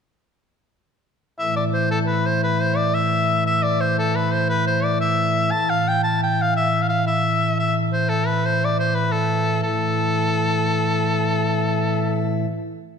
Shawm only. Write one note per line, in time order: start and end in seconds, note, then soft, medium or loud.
1.39 1.55 E5 medium
1.56 1.64 D5 medium
1.73 1.89 C5 medium
1.91 1.98 A4 medium
2.07 2.27 B4 medium
2.26 2.43 C5 medium
2.43 2.63 B4 medium
2.62 2.78 C5 medium
2.76 2.96 D5 medium
2.94 3.46 E5 medium
3.46 3.64 E5 medium
3.63 3.82 D5 medium
3.80 3.97 C5 medium
3.99 4.17 A4 medium
4.16 4.34 B4 medium
4.33 4.48 C5 medium
4.49 4.65 B4 medium
4.67 4.85 C5 medium
4.84 5.00 D5 medium
5.01 5.52 E5 medium
5.51 5.71 A5 medium
5.70 5.90 F5 medium
5.88 6.03 G5 medium
6.04 6.19 A5 medium
6.23 6.43 G5 medium
6.42 6.56 F5 medium
6.56 6.83 E5 medium
6.82 6.88 F5 medium
6.89 7.05 F5 medium
7.07 7.54 E5 medium
7.59 7.74 E5 medium
7.93 8.11 C5 medium
8.09 8.28 A4 medium
8.27 8.47 B4 medium
8.46 8.66 C5 medium
8.64 8.79 D5 medium
8.79 8.96 C5 medium
8.95 9.13 B4 medium
9.12 9.62 A4 medium
9.63 12.42 A4 medium